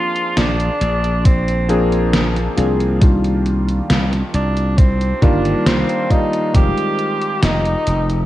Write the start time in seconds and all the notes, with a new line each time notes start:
Already playing: F3 A#3 C4 D4 F4 G#4
0.16 closed hi-hat
0.37 A#1 D4, snare, closed hi-hat
0.60 closed hi-hat
0.81 A#1, closed hi-hat
1.04 closed hi-hat
1.25 C4, kick, closed hi-hat
1.48 closed hi-hat
1.69 F3 A#3 C4 D4 G#4, closed hi-hat
1.92 closed hi-hat
2.13 snare, closed hi-hat
2.36 snare, closed hi-hat
2.57 C2 F3 A#3 C4 D4 G#4, closed hi-hat
2.80 closed hi-hat
3.00 D#3 G3 A#3 D4 F4, kick, closed hi-hat
3.24 closed hi-hat
3.46 closed hi-hat
3.68 closed hi-hat
3.90 C2, snare, closed hi-hat
4.13 snare, closed hi-hat
4.34 C2 D4, closed hi-hat
4.57 closed hi-hat
4.78 C4, kick, closed hi-hat
5.01 closed hi-hat
5.22 G1 D#3 G3 A#3 D4 F4, kick, closed hi-hat
5.45 closed hi-hat
5.66 C2 C4, snare, closed hi-hat
5.89 closed hi-hat
6.10 D#3 G3 A#3 D#4 F4 D5, kick, closed hi-hat
6.33 closed hi-hat
6.53 F1 D#3 G3 G#3 C4 F4 G4, kick, closed hi-hat
6.78 closed hi-hat
6.99 closed hi-hat
7.22 closed hi-hat
7.43 F1 D#4, snare, closed hi-hat
7.66 closed hi-hat
7.87 F1, closed hi-hat
8.10 closed hi-hat